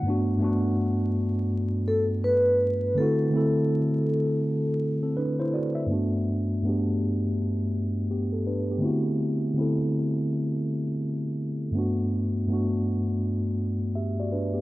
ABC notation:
X:1
M:4/4
L:1/16
Q:"Swing 16ths" 1/4=82
K:G
V:1 name="Vibraphone"
z8 z2 A2 B4 | A12 z4 | z16 | z16 |
z16 |]
V:2 name="Tine electric piano"
z16 | z8 z3 [CA] [DB] [Ec] [Fd] e- | e z8 z3 [B,G] A [DB] [B,G]- | [B,G] z12 z3 |
z12 [Ge] [Fd] [DB] [B,G] |]
V:3 name="Tine electric piano"
[G,,A,B,DF]2 [G,,A,B,DF]6 z8 | [D,A,CEF]2 [D,A,CEA]6 z8 | [G,,A,B,DF]4 [G,,A,B,DG]6 z6 | [D,A,CEF]4 [D,A,CEA]6 z6 |
[G,,A,B,DF]4 [G,,A,B,DF]6 z6 |]